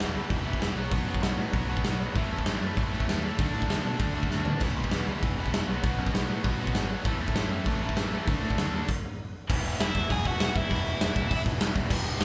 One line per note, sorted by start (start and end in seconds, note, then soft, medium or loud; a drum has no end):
0.00 0.10 E1 medium
0.00 0.14 E2 medium
0.00 0.14 B2 medium
0.00 0.44 E3 medium
0.00 0.14 E3 medium
0.00 0.45 G#3 medium
0.00 0.44 B3 medium
0.00 0.43 E4 medium
0.00 snare medium
0.00 open hi-hat medium
0.14 0.25 C#2 medium
0.14 0.28 E2 medium
0.14 0.29 B2 medium
0.14 0.30 E3 loud
0.30 0.41 E1 medium
0.30 0.45 E2 medium
0.30 0.45 B2 medium
0.30 0.45 E3 medium
0.30 kick medium
0.30 open hi-hat soft
0.43 0.55 E1 medium
0.43 0.59 E2 medium
0.43 0.60 B2 medium
0.43 0.61 E3 medium
0.43 0.59 E3 medium
0.43 0.60 G#3 medium
0.43 0.60 B3 medium
0.43 0.59 E4 medium
0.53 kick medium
0.60 0.71 E1 medium
0.60 0.76 E2 medium
0.60 0.75 B2 medium
0.60 0.75 E3 medium
0.60 0.76 E3 medium
0.60 0.76 G#3 medium
0.60 0.76 B3 medium
0.60 0.77 E4 medium
0.60 snare medium
0.60 open hi-hat medium
0.75 0.86 B1 medium
0.75 1.52 B2 medium
0.75 0.92 B2 medium
0.75 1.53 D#3 medium
0.75 0.91 F#3 medium
0.75 1.53 F#3 medium
0.75 0.91 B3 medium
0.75 1.54 B3 medium
0.75 1.54 D#4 medium
0.91 1.02 B1 medium
0.91 1.06 B2 medium
0.91 1.06 F#3 medium
0.91 1.07 B3 loud
0.91 kick loud
0.91 open hi-hat medium
1.06 1.17 F#2 medium
1.06 1.21 B2 medium
1.06 1.21 F#3 medium
1.06 1.21 B3 medium
1.15 kick medium
1.22 1.33 B1 medium
1.22 1.37 B2 medium
1.22 1.37 F#3 medium
1.22 1.37 B3 medium
1.22 snare loud
1.22 open hi-hat medium
1.37 1.48 A2 medium
1.37 1.53 B2 medium
1.37 1.52 F#3 medium
1.37 1.52 B3 medium
1.53 1.64 B1 medium
1.53 1.68 B2 medium
1.53 1.67 B2 medium
1.53 1.68 D#3 medium
1.53 1.68 F#3 medium
1.53 1.68 B3 medium
1.53 1.67 B3 medium
1.53 1.66 D#4 medium
1.53 kick loud
1.53 open hi-hat soft
1.67 1.79 B1 medium
1.67 1.84 B2 medium
1.67 1.99 B2 medium
1.67 1.99 D#3 medium
1.67 1.84 F#3 medium
1.67 1.99 F#3 medium
1.67 1.98 B3 medium
1.67 1.83 B3 medium
1.67 1.98 D#4 medium
1.77 kick medium
1.84 2.05 B1 medium
1.84 1.99 B2 medium
1.84 1.99 F#3 medium
1.84 1.99 B3 medium
1.84 snare loud
1.84 open hi-hat soft
2.00 2.14 B2 medium
2.00 2.15 F#3 medium
2.00 2.15 B3 medium
2.14 2.25 A1 medium
2.14 2.91 A2 medium
2.14 2.31 A2 medium
2.14 2.91 E3 medium
2.14 2.31 E3 medium
2.14 2.91 A3 medium
2.14 2.31 A3 loud
2.14 2.91 C#4 medium
2.14 2.90 E4 medium
2.14 kick loud
2.14 open hi-hat medium
2.32 2.42 E2 medium
2.32 2.46 A2 medium
2.32 2.46 E3 medium
2.32 2.47 A3 medium
2.39 kick medium
2.46 2.57 A1 medium
2.46 2.60 A2 medium
2.46 2.60 E3 medium
2.46 2.61 A3 medium
2.46 snare loud
2.46 open hi-hat medium
2.61 2.72 F#2 medium
2.61 2.76 A2 medium
2.61 2.77 E3 medium
2.61 2.77 A3 medium
2.76 2.87 A1 medium
2.76 2.93 A2 medium
2.76 2.93 E3 medium
2.76 2.92 A3 medium
2.76 kick loud
2.76 open hi-hat soft
2.91 3.03 A1 medium
2.91 3.07 A2 medium
2.91 3.06 A2 medium
2.91 3.07 E3 medium
2.91 3.07 A3 loud
2.91 3.07 A3 medium
2.91 3.07 C#4 medium
2.91 3.06 E4 medium
3.00 kick medium
3.07 3.28 D#2 medium
3.07 3.37 A2 medium
3.07 3.23 A2 medium
3.07 3.23 E3 medium
3.07 3.37 E3 medium
3.07 3.22 A3 medium
3.07 3.38 A3 medium
3.07 3.38 C#4 medium
3.07 snare medium
3.07 open hi-hat soft
3.11 3.39 E4 medium
3.24 3.38 A2 medium
3.24 3.38 E3 medium
3.24 3.37 A3 medium
3.38 3.49 D2 medium
3.38 4.14 D3 medium
3.38 3.53 D3 medium
3.38 3.53 A3 medium
3.38 4.15 A3 medium
3.38 3.53 D4 medium
3.38 4.15 D4 medium
3.38 4.13 F#4 medium
3.38 kick loud
3.38 open hi-hat medium
3.54 3.64 A2 medium
3.54 3.67 D3 medium
3.54 3.67 A3 medium
3.54 3.68 D4 medium
3.62 kick medium
3.68 3.79 D2 medium
3.68 3.82 D3 medium
3.68 3.82 A3 medium
3.68 3.82 D4 medium
3.68 snare loud
3.68 open hi-hat medium
3.83 3.95 B2 medium
3.83 3.97 D3 medium
3.83 3.98 A3 medium
3.83 3.98 D4 medium
3.98 4.10 D2 medium
3.98 4.14 D3 medium
3.98 4.13 A3 medium
3.98 4.13 D4 medium
3.98 kick medium
3.98 open hi-hat medium
4.14 4.26 D2 medium
4.14 4.29 D3 medium
4.14 4.29 A3 medium
4.14 4.30 D4 medium
4.14 4.29 F#4 medium
4.23 kick medium
4.30 4.52 D2 medium
4.30 4.59 D3 medium
4.30 4.45 D3 medium
4.30 4.45 A3 medium
4.30 4.60 A3 medium
4.30 4.45 D4 medium
4.30 4.61 D4 medium
4.30 4.62 F#4 medium
4.30 snare medium
4.45 4.61 D3 medium
4.45 4.60 A3 medium
4.45 4.60 D4 medium
4.45 floor tom medium
4.60 4.71 E1 medium
4.60 4.77 E2 medium
4.60 4.77 B2 medium
4.60 5.36 E3 medium
4.60 4.76 E3 loud
4.60 5.37 G#3 medium
4.60 5.37 B3 medium
4.60 5.36 E4 medium
4.60 kick loud
4.60 open hi-hat medium
4.60 splash medium
4.77 4.87 B1 medium
4.77 4.92 E2 medium
4.77 4.93 B2 medium
4.77 4.93 E3 medium
4.84 kick medium
4.91 5.02 E1 medium
4.91 5.07 E2 medium
4.91 5.07 B2 medium
4.91 5.06 E3 medium
4.91 snare loud
4.91 open hi-hat soft
5.07 5.17 C#2 medium
5.07 5.21 E2 medium
5.07 5.22 B2 medium
5.07 5.22 E3 loud
5.23 5.33 E1 medium
5.23 5.37 E2 medium
5.23 5.37 B2 medium
5.23 5.36 E3 medium
5.23 kick loud
5.23 open hi-hat soft
5.36 5.47 E1 medium
5.36 5.51 E2 medium
5.36 5.51 B2 loud
5.36 5.51 E3 medium
5.36 5.52 G#3 medium
5.36 5.52 B3 medium
5.36 5.52 E4 medium
5.46 kick medium
5.50 5.61 E1 medium
5.50 5.67 E2 medium
5.50 5.67 B2 medium
5.50 5.67 E3 medium
5.50 5.68 G#3 medium
5.50 snare loud
5.50 open hi-hat soft
5.55 5.68 B3 medium
5.55 5.69 E4 medium
5.67 5.78 B1 medium
5.67 6.42 B2 medium
5.67 5.83 B2 medium
5.67 6.43 D#3 medium
5.67 5.82 F#3 medium
5.67 6.44 F#3 medium
5.67 5.82 B3 medium
5.67 6.44 B3 medium
5.67 6.45 D#4 medium
5.83 5.94 B1 medium
5.83 5.97 B2 medium
5.83 5.98 F#3 medium
5.83 5.98 B3 medium
5.83 kick loud
5.83 open hi-hat medium
5.98 6.09 F#2 medium
5.98 6.13 B2 medium
5.98 6.12 F#3 medium
5.98 6.11 B3 medium
6.06 kick medium
6.13 6.24 B1 medium
6.13 6.28 B2 medium
6.13 6.28 F#3 medium
6.13 6.29 B3 medium
6.13 snare loud
6.13 open hi-hat medium
6.28 6.39 A2 medium
6.28 6.43 B2 medium
6.28 6.43 F#3 medium
6.28 6.43 B3 medium
6.43 6.55 B1 medium
6.43 6.58 B2 medium
6.43 6.57 B2 medium
6.43 6.59 D#3 medium
6.43 6.58 F#3 medium
6.43 6.59 F#3 medium
6.43 6.58 B3 medium
6.43 6.57 D#4 medium
6.43 kick loud
6.43 open hi-hat medium
6.58 6.70 B1 medium
6.58 6.75 B2 medium
6.58 6.90 B2 medium
6.58 6.90 D#3 medium
6.58 6.74 F#3 loud
6.58 6.89 F#3 medium
6.58 6.89 B3 medium
6.58 6.74 B3 loud
6.58 6.89 D#4 medium
6.67 kick medium
6.73 6.94 G#1 medium
6.73 6.89 B2 medium
6.73 6.89 F#3 medium
6.73 6.90 B3 medium
6.73 snare medium
6.73 open hi-hat medium
6.90 7.05 B2 medium
6.90 7.05 F#3 medium
6.90 7.05 B3 medium
7.03 7.15 A1 medium
7.03 7.79 A2 medium
7.03 7.20 A2 medium
7.03 7.80 E3 medium
7.03 7.20 E3 loud
7.03 7.80 A3 medium
7.03 7.20 A3 loud
7.03 7.80 C#4 medium
7.03 7.79 E4 medium
7.03 kick loud
7.03 open hi-hat medium
7.17 7.29 E2 medium
7.17 7.35 E3 medium
7.17 7.36 A3 medium
7.21 7.35 A2 medium
7.28 kick medium
7.34 7.45 A1 medium
7.34 7.51 A2 medium
7.34 7.51 E3 medium
7.34 7.50 A3 medium
7.34 snare loud
7.34 open hi-hat medium
7.48 7.60 F#2 medium
7.48 7.65 A2 medium
7.48 7.65 E3 medium
7.48 7.66 A3 medium
7.66 7.76 A1 medium
7.66 7.81 A2 medium
7.66 7.81 E3 medium
7.66 7.81 A3 medium
7.66 kick loud
7.66 open hi-hat soft
7.79 7.90 A1 medium
7.79 7.97 A2 medium
7.79 7.95 E3 medium
7.79 7.98 E3 medium
7.79 7.96 A3 medium
7.79 7.98 A3 loud
7.79 7.96 C#4 medium
7.79 7.95 E4 medium
7.84 7.94 A2 medium
7.89 kick medium
7.94 8.15 A1 medium
7.94 8.25 A2 medium
7.94 8.26 E3 medium
7.94 8.27 A3 medium
7.94 snare loud
7.94 open hi-hat soft
7.98 8.13 A2 medium
7.98 8.12 E3 medium
7.98 8.11 A3 loud
7.98 8.27 C#4 medium
7.98 8.27 E4 medium
8.13 8.27 A2 medium
8.13 8.27 E3 medium
8.13 8.27 A3 medium
8.27 8.37 D2 medium
8.27 8.87 D3 medium
8.27 8.43 D3 medium
8.27 8.88 A3 medium
8.27 8.43 A3 loud
8.27 8.88 D4 medium
8.27 8.43 D4 medium
8.27 8.88 F#4 loud
8.27 kick loud
8.27 open hi-hat medium
8.41 8.52 A2 medium
8.41 8.58 D3 medium
8.41 8.58 A3 medium
8.41 8.59 D4 medium
8.50 kick medium
8.56 8.67 D2 medium
8.56 8.74 D3 medium
8.56 8.74 A3 medium
8.56 snare loud
8.56 open hi-hat medium
8.60 8.73 D4 medium
8.71 8.81 D#2 medium
8.71 8.88 D4 loud
8.75 8.88 D3 medium
8.75 8.88 A3 medium
8.88 kick medium
8.88 crash medium
9.48 9.59 E1 medium
9.48 9.80 E2 medium
9.48 9.79 B2 loud
9.48 10.27 E3 medium
9.48 9.80 E3 loud
9.48 10.26 G#3 loud
9.48 10.24 B3 medium
9.48 10.24 E4 loud
9.48 kick loud
9.48 crash loud
9.64 9.74 E1 medium
9.80 9.89 E1 medium
9.80 9.95 E2 medium
9.80 9.94 B2 medium
9.80 9.94 E3 medium
9.80 10.08 E4 medium
9.80 10.11 E5 medium
9.80 snare loud
9.80 open hi-hat medium
9.95 10.05 E1 medium
9.95 10.10 E2 medium
9.95 10.10 B2 medium
9.95 10.11 E3 loud
9.95 kick medium
10.10 10.20 E1 loud
10.10 10.41 E2 medium
10.10 10.40 B2 loud
10.10 10.41 E3 loud
10.10 10.24 G#4 medium
10.10 10.24 G#5 loud
10.10 kick loud
10.10 open hi-hat medium
10.24 10.34 E1 medium
10.24 10.40 E3 medium
10.24 10.41 G#3 medium
10.24 10.41 B3 medium
10.24 10.43 E4 medium
10.24 10.54 F#4 medium
10.24 10.57 F#5 loud
10.24 kick medium
10.39 10.48 E1 loud
10.39 10.57 E2 medium
10.39 10.55 B2 loud
10.39 10.69 E3 medium
10.39 10.56 E3 loud
10.39 10.70 G#3 medium
10.39 10.71 B3 medium
10.39 snare loud
10.39 open hi-hat medium
10.43 10.72 E4 loud
10.55 10.64 E1 medium
10.55 10.71 E2 medium
10.55 10.71 B2 medium
10.55 10.72 E3 loud
10.55 11.42 E4 medium
10.55 11.42 E5 medium
10.55 kick loud
10.70 10.80 E1 loud
10.70 11.02 E2 loud
10.70 11.01 B2 loud
10.70 11.47 E3 medium
10.70 11.02 E3 loud
10.70 11.46 G#3 loud
10.70 11.45 B3 loud
10.70 11.44 E4 loud
10.70 kick loud
10.70 open hi-hat medium
10.85 10.94 E1 loud
10.99 11.09 E1 medium
10.99 11.16 E2 medium
10.99 11.15 B2 medium
10.99 11.15 E3 loud
10.99 snare loud
10.99 open hi-hat medium
11.15 11.25 E1 loud
11.15 11.30 E2 medium
11.15 11.30 B2 loud
11.15 11.31 E3 loud
11.15 kick loud
11.31 11.40 E1 medium
11.31 11.60 E2 loud
11.31 11.59 B2 loud
11.31 11.61 E3 loud
11.31 kick loud
11.31 open hi-hat medium
11.44 11.55 E1 medium
11.44 11.58 E3 medium
11.44 11.59 G#3 medium
11.44 11.60 B3 medium
11.44 11.62 E4 medium
11.44 kick medium
11.58 11.68 E1 loud
11.58 11.76 E2 loud
11.58 11.74 B2 medium
11.58 11.88 E3 medium
11.58 11.74 E3 loud
11.58 11.89 G#3 medium
11.58 11.90 B3 medium
11.58 11.91 E4 medium
11.58 snare loud
11.58 open hi-hat medium
11.75 11.85 E1 medium
11.75 11.88 E2 medium
11.75 11.88 B2 medium
11.75 11.89 E3 loud
11.75 kick medium
11.88 12.00 E1 loud
11.88 12.18 E2 loud
11.88 12.19 B2 loud
11.88 12.24 E3 medium
11.88 12.20 E3 loud
11.88 12.24 G#3 loud
11.88 12.24 B3 loud
11.88 12.24 E4 loud
11.88 kick loud
11.88 crash loud
12.02 12.13 E1 loud
12.18 12.24 E1 loud
12.18 12.24 E2 medium
12.18 12.24 B2 medium
12.18 12.24 E3 loud
12.18 snare loud
12.18 open hi-hat medium